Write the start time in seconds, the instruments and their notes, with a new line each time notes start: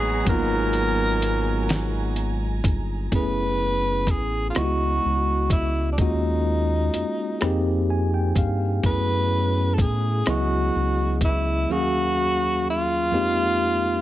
Already playing: analog synth bass A1, tine electric piano F#3 A#3 B3 D#4 G#4, horn section F#3 B3 D#4 F#4, string section G#3 G#5 A#5, tenor saxophone G#4
0.25 analog synth bass G#1, tine electric piano F#3 A#3 B3, tenor saxophone A#4, kick, closed hi-hat
0.29 tine electric piano D#4 F4
0.73 closed hi-hat
1.22 closed hi-hat
1.69 snare, closed hi-hat
2.16 closed hi-hat
2.64 analog synth bass G1, kick, closed hi-hat
3.12 analog synth bass F#1, tine electric piano A3 B3 C#4 E4 G#4, tenor saxophone B4, kick, closed hi-hat
4.07 analog synth bass A1, tenor saxophone G#4, kick, closed hi-hat
4.50 tenor saxophone F4
4.55 analog synth bass C#2, tine electric piano G#3 B3 E4 F4 D#5, tenor saxophone F#4, cross-stick, closed hi-hat
4.65 tine electric piano F#4
5.05 analog synth bass C#2
5.50 tenor saxophone E4, kick, closed hi-hat
5.92 tenor saxophone D4
5.98 analog synth bass D#2, tine electric piano G#3 A#3 C#4 F4 F#4, tenor saxophone D#4, kick, closed hi-hat
6.94 analog synth bass F2, closed hi-hat
7.41 analog synth bass F2, tine electric piano A#3 C4 D#4 G4 G#4, cross-stick, closed hi-hat
7.90 tine electric piano G#5
8.14 tine electric piano G5
8.36 analog synth bass G2, tine electric piano F5, kick, closed hi-hat
8.83 analog synth bass F#2, tine electric piano A3 B3 C#4 E4, tenor saxophone B4, kick, closed hi-hat
8.87 tine electric piano G#4
9.74 tenor saxophone A4
9.78 analog synth bass A2, tenor saxophone G#4, kick, closed hi-hat
10.26 analog synth bass C#2, tine electric piano F#3 B3 E4 G#4 D#5, tenor saxophone F#4, cross-stick, closed hi-hat
10.76 analog synth bass C#2
11.21 tenor saxophone E4, kick, closed hi-hat
11.69 tine electric piano D#2 F#3 A#3 C#4 G#4 F5, tenor saxophone F#4
12.70 tenor saxophone F4
13.11 tine electric piano F2 G#3 A#3 C4 D#4 G4